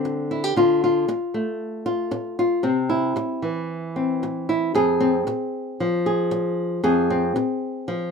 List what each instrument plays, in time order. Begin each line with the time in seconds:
Already playing: nylon-string guitar D3 G3 C4 E4
0.05 muted nylon-string guitar stroke
0.31 nylon-string guitar E4
0.44 nylon-string guitar G4
0.56 nylon-string guitar D3 F4
0.84 nylon-string guitar F4
1.08 muted nylon-string guitar stroke
1.34 nylon-string guitar A3
1.86 nylon-string guitar F4
2.11 muted nylon-string guitar stroke
2.39 nylon-string guitar F4
2.63 nylon-string guitar C3 C4
2.90 nylon-string guitar E4
3.16 muted nylon-string guitar stroke
3.42 nylon-string guitar E3
3.96 nylon-string guitar C4
4.23 muted nylon-string guitar stroke
4.49 nylon-string guitar E4
4.75 nylon-string guitar F2 G#4
5.00 nylon-string guitar C4
5.27 muted nylon-string guitar stroke
5.80 nylon-string guitar F3
6.06 nylon-string guitar G#4
6.31 muted nylon-string guitar stroke
6.83 nylon-string guitar F2 G#4
7.10 nylon-string guitar C4
7.36 muted nylon-string guitar stroke
7.88 nylon-string guitar F3